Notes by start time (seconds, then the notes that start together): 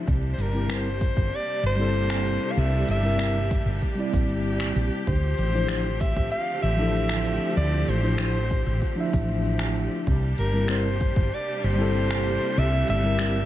0.07 C2 C3 G3 A#3 D4 G4, kick, cabasa
0.22 cabasa
0.33 C5
0.38 G1 A#4, cabasa
0.53 G3 C4 E4 A#4, cabasa
0.68 G3 C4 E4 A#4 C5, finger snap, cabasa
0.85 cabasa
1.01 kick, cabasa
1.17 G1, kick, cabasa
1.32 D5, cabasa
1.47 cabasa
1.63 G1 C5, cabasa
1.76 G3 C4 E4, cabasa
1.81 A4
1.94 cabasa
2.10 finger snap, cabasa
2.25 cabasa
2.41 cabasa
2.52 F5
2.56 C2 E5, cabasa
2.72 cabasa
2.88 G1 E5, cabasa
3.03 G3 C4 E4 A#4, cabasa
3.17 G3 C4 E4 A#4, finger snap, cabasa
3.35 cabasa
3.51 kick, cabasa
3.66 G1, cabasa
3.82 kick, cabasa
3.95 G3 C4 E4, cabasa
4.00 D5
4.13 A#1, kick, cabasa
4.28 G1, cabasa
4.44 cabasa
4.60 finger snap, cabasa
4.76 A#1, cabasa
4.91 cabasa
5.06 D2 D3 F3 A3 C4 C5, kick, cabasa
5.22 cabasa
5.38 A1, cabasa
5.53 F3 D4 E4 C5, cabasa
5.68 F3 D4 E4 C5, finger snap, cabasa
5.84 cabasa
6.00 E5, kick, cabasa
6.16 A1, kick, cabasa
6.31 F5, cabasa
6.47 cabasa
6.62 A1 E5, cabasa
6.77 F3 D4 E4, cabasa
6.82 A4
6.94 cabasa
7.09 finger snap, cabasa
7.25 cabasa
7.41 cabasa
7.56 D2 D5, cabasa
7.72 cabasa
7.87 A1 C5, cabasa
8.02 F3 D4 E4 C5, cabasa
8.18 F3 D4 E4 C5, finger snap, cabasa
8.34 cabasa
8.50 kick, cabasa
8.66 A1, cabasa
8.81 kick, cabasa
8.96 F3 D4 E4, cabasa
9.00 E5
9.13 A1, kick, cabasa
9.28 cabasa
9.44 cabasa
9.59 finger snap, cabasa
9.75 cabasa
9.91 cabasa
10.07 C2 C3 G3 A#3 D4 G4, kick, cabasa
10.22 cabasa
10.37 G1 A#4, cabasa
10.53 G3 C4 E4 A#4, cabasa
10.68 G3 C4 E4 A#4 C5, finger snap, cabasa
10.85 cabasa
11.00 kick, cabasa
11.16 G1, kick, cabasa
11.32 D5, cabasa
11.48 cabasa
11.56 D5
11.63 G1 C5, cabasa
11.76 G3 C4 E4, cabasa
11.81 A4
11.95 cabasa
12.11 finger snap, cabasa
12.26 cabasa
12.42 cabasa
12.57 C2 E5, cabasa
12.73 cabasa
12.88 G1 E5, cabasa
13.03 G3 C4 E4 A#4, cabasa
13.19 G3 C4 E4 A#4, finger snap, cabasa
13.35 cabasa